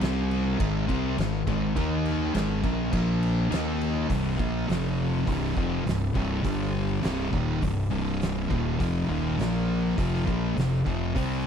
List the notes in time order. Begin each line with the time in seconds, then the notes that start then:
0.00 C2 C3 G3 C4, snare, crash
0.31 crash
0.58 G#1 G#2 D#3 G#3, kick, crash
0.87 C2 C3 G3 C4, kick, crash
1.18 G#1 G#2 D#3, snare, crash
1.47 G#1 G#2 D#3 G#3, kick, crash
1.76 D#2 D#3 A#3 D#4, kick, crash
2.05 crash
2.33 G#1 G#2 D#3 G#3, snare, crash
2.62 A#1 A#2 F3 A#3, kick, crash
2.92 A#1 A#2 F3 A#3, kick, crash
3.23 crash
3.49 D#2 D#3 A#3 D#4, crash
3.54 snare
3.81 crash
4.09 C1 C2 G2 C3, kick, open hi-hat
4.38 A#1 A#2 F3 A#3, kick
4.67 F1 F2 C3 F3, open hi-hat
4.71 snare
5.25 C1 C2 G2 C3, kick, open hi-hat
5.55 F1 F2 C3 F3, kick
5.85 C1 C2 G2, open hi-hat
5.89 snare
6.13 C1 C2 G2 C3, kick
6.43 G1 G2 D3 G3, kick, open hi-hat
7.02 C1 C2 G2 C3, snare, open hi-hat
7.32 D#1 D#2 A#2 D#3, kick
7.62 C1 C2 G2, kick, open hi-hat
7.90 C1 C2 G2 C3
8.21 snare, open hi-hat
8.49 D#1 D#2 A#2 D#3, kick
8.78 F1 F2 C3 F3, kick, open hi-hat
9.08 D#1 D#2 A#2 D#3
9.38 A#1 A#2 F3 A#3, snare, open hi-hat
9.96 F1 F2 C3 F3, kick, open hi-hat
10.16 snare
10.25 A#1 A#2 F3 A#3, kick
10.54 F1 F2 C3, open hi-hat
10.59 snare
10.86 F1 F2 C3 F3, kick
11.15 C2 C3 G3 C4, kick, open hi-hat